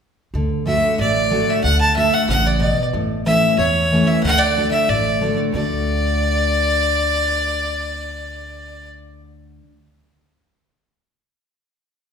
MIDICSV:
0, 0, Header, 1, 4, 480
1, 0, Start_track
1, 0, Key_signature, 2, "major"
1, 0, Tempo, 323450
1, 510, Time_signature, 4, 2, 24, 8
1, 17991, End_track
2, 0, Start_track
2, 0, Title_t, "Fiddle"
2, 0, Program_c, 0, 110
2, 998, Note_on_c, 0, 76, 88
2, 1441, Note_off_c, 0, 76, 0
2, 1493, Note_on_c, 0, 74, 83
2, 2221, Note_on_c, 0, 76, 86
2, 2244, Note_off_c, 0, 74, 0
2, 2417, Note_off_c, 0, 76, 0
2, 2425, Note_on_c, 0, 78, 100
2, 2660, Note_off_c, 0, 78, 0
2, 2680, Note_on_c, 0, 81, 91
2, 2898, Note_off_c, 0, 81, 0
2, 2908, Note_on_c, 0, 76, 99
2, 3164, Note_on_c, 0, 78, 92
2, 3186, Note_off_c, 0, 76, 0
2, 3388, Note_off_c, 0, 78, 0
2, 3397, Note_on_c, 0, 78, 97
2, 3662, Note_on_c, 0, 74, 85
2, 3684, Note_off_c, 0, 78, 0
2, 3866, Note_off_c, 0, 74, 0
2, 3875, Note_on_c, 0, 74, 78
2, 4216, Note_off_c, 0, 74, 0
2, 4835, Note_on_c, 0, 76, 106
2, 5287, Note_off_c, 0, 76, 0
2, 5320, Note_on_c, 0, 73, 93
2, 6039, Note_on_c, 0, 76, 91
2, 6061, Note_off_c, 0, 73, 0
2, 6270, Note_off_c, 0, 76, 0
2, 6279, Note_on_c, 0, 78, 111
2, 6505, Note_on_c, 0, 74, 96
2, 6528, Note_off_c, 0, 78, 0
2, 6983, Note_off_c, 0, 74, 0
2, 6992, Note_on_c, 0, 76, 93
2, 7251, Note_on_c, 0, 74, 88
2, 7273, Note_off_c, 0, 76, 0
2, 7981, Note_off_c, 0, 74, 0
2, 8230, Note_on_c, 0, 74, 101
2, 13186, Note_off_c, 0, 74, 0
2, 17991, End_track
3, 0, Start_track
3, 0, Title_t, "Steel-string acoustic guitar"
3, 0, Program_c, 1, 25
3, 517, Note_on_c, 1, 50, 85
3, 955, Note_off_c, 1, 50, 0
3, 973, Note_on_c, 1, 50, 90
3, 987, Note_on_c, 1, 57, 81
3, 1001, Note_on_c, 1, 62, 84
3, 1005, Note_on_c, 1, 66, 87
3, 1439, Note_off_c, 1, 50, 0
3, 1446, Note_off_c, 1, 57, 0
3, 1453, Note_off_c, 1, 62, 0
3, 1455, Note_off_c, 1, 66, 0
3, 1455, Note_on_c, 1, 45, 88
3, 1935, Note_on_c, 1, 50, 83
3, 1948, Note_on_c, 1, 57, 101
3, 1957, Note_on_c, 1, 62, 95
3, 1971, Note_on_c, 1, 66, 91
3, 2379, Note_off_c, 1, 45, 0
3, 2395, Note_off_c, 1, 50, 0
3, 2408, Note_off_c, 1, 57, 0
3, 2412, Note_off_c, 1, 62, 0
3, 2412, Note_on_c, 1, 50, 80
3, 2420, Note_off_c, 1, 66, 0
3, 2878, Note_off_c, 1, 50, 0
3, 2896, Note_on_c, 1, 50, 87
3, 2915, Note_on_c, 1, 57, 92
3, 2926, Note_on_c, 1, 62, 89
3, 2930, Note_on_c, 1, 66, 89
3, 3364, Note_off_c, 1, 50, 0
3, 3373, Note_off_c, 1, 57, 0
3, 3379, Note_off_c, 1, 62, 0
3, 3381, Note_off_c, 1, 66, 0
3, 3394, Note_on_c, 1, 49, 91
3, 3854, Note_off_c, 1, 49, 0
3, 3871, Note_on_c, 1, 47, 91
3, 4333, Note_off_c, 1, 47, 0
3, 4364, Note_on_c, 1, 45, 87
3, 4839, Note_on_c, 1, 52, 79
3, 4848, Note_on_c, 1, 57, 83
3, 4858, Note_on_c, 1, 61, 92
3, 4866, Note_on_c, 1, 64, 96
3, 5279, Note_off_c, 1, 45, 0
3, 5299, Note_off_c, 1, 52, 0
3, 5304, Note_off_c, 1, 57, 0
3, 5309, Note_off_c, 1, 61, 0
3, 5313, Note_off_c, 1, 64, 0
3, 5335, Note_on_c, 1, 40, 91
3, 5806, Note_on_c, 1, 52, 89
3, 5823, Note_on_c, 1, 57, 93
3, 5834, Note_on_c, 1, 61, 100
3, 5843, Note_on_c, 1, 64, 96
3, 6247, Note_off_c, 1, 40, 0
3, 6265, Note_off_c, 1, 52, 0
3, 6273, Note_off_c, 1, 57, 0
3, 6279, Note_off_c, 1, 61, 0
3, 6283, Note_off_c, 1, 64, 0
3, 6292, Note_on_c, 1, 50, 83
3, 6748, Note_off_c, 1, 50, 0
3, 6766, Note_on_c, 1, 50, 90
3, 6778, Note_on_c, 1, 57, 88
3, 6791, Note_on_c, 1, 62, 89
3, 6798, Note_on_c, 1, 66, 95
3, 7226, Note_off_c, 1, 50, 0
3, 7232, Note_off_c, 1, 57, 0
3, 7239, Note_off_c, 1, 62, 0
3, 7242, Note_off_c, 1, 66, 0
3, 7262, Note_on_c, 1, 45, 81
3, 7728, Note_on_c, 1, 50, 86
3, 7749, Note_on_c, 1, 57, 84
3, 7756, Note_on_c, 1, 62, 86
3, 7767, Note_on_c, 1, 66, 89
3, 8172, Note_off_c, 1, 45, 0
3, 8179, Note_off_c, 1, 50, 0
3, 8196, Note_on_c, 1, 50, 75
3, 8199, Note_off_c, 1, 57, 0
3, 8202, Note_off_c, 1, 62, 0
3, 8208, Note_off_c, 1, 66, 0
3, 8215, Note_on_c, 1, 57, 75
3, 8233, Note_on_c, 1, 62, 86
3, 8248, Note_on_c, 1, 66, 87
3, 14268, Note_off_c, 1, 50, 0
3, 14277, Note_off_c, 1, 57, 0
3, 14286, Note_off_c, 1, 62, 0
3, 14293, Note_off_c, 1, 66, 0
3, 17991, End_track
4, 0, Start_track
4, 0, Title_t, "Upright bass"
4, 0, Program_c, 2, 32
4, 499, Note_on_c, 2, 38, 82
4, 1132, Note_off_c, 2, 38, 0
4, 1469, Note_on_c, 2, 33, 83
4, 2099, Note_off_c, 2, 33, 0
4, 2433, Note_on_c, 2, 38, 86
4, 3063, Note_off_c, 2, 38, 0
4, 3392, Note_on_c, 2, 33, 94
4, 4024, Note_off_c, 2, 33, 0
4, 4353, Note_on_c, 2, 33, 84
4, 4987, Note_off_c, 2, 33, 0
4, 5319, Note_on_c, 2, 40, 89
4, 5951, Note_off_c, 2, 40, 0
4, 6288, Note_on_c, 2, 38, 81
4, 6919, Note_off_c, 2, 38, 0
4, 7247, Note_on_c, 2, 33, 81
4, 7878, Note_off_c, 2, 33, 0
4, 8215, Note_on_c, 2, 38, 89
4, 14218, Note_off_c, 2, 38, 0
4, 17991, End_track
0, 0, End_of_file